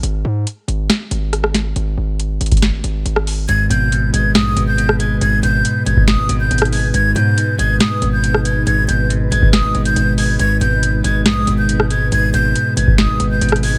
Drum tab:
HH |x-----------------------x-----------x-----------x-----------x-----------x-----------x-----------|x-----------------------x-----------x--x--x--x--x-----------x-----------x-----------o-----------|x-----------x-----------x-----------x-----------x-----------x-----------x-----------x-----------|x-----------x-----------x-----------x-----------x-----------x-----------x---x---x---o-----------|
SD |------------------------------------------------o-----------------------r-----r-----o-----------|------------------------------------------------o-----------------------------r-----------------|------------------------------------------------o-----------------------------r-----------------|------------------------------------------------o-----------------------------r-----------------|
BD |------------------------------------------------------------------------------------------------|------------------------------------------o-----------------------------------------------------|------------------------------------------------------------------------------------------------|------------------------------------------o-----------------------------------------------------|

HH |x-----------x-----------x-----------x-----------x-----------x-----------x-----------x-----------|x-----------x-----------x-----------x-----------x-----------x-----x-----x-----------o-----------|x-----------x-----------x-----------x-----------x-----------x-----------x-----------x-----------|x-----------x-----------x-----------x-----------x-----------x-----------x---x---x---o-----------|
SD |------------------------------------------------o-----------------------------r-----------------|------------------------------------------------o-----------------------------------------------|------------------------------------------------o-----------------------------r-----------------|------------------------------------------------o-----------------------------r-----------------|
BD |------------------------------------------------------------------------------------------------|------------------------------------------o-----------------------------------------------------|------------------------------------------------------------------------------------------------|------------------------------------------o-----------------------------------------------------|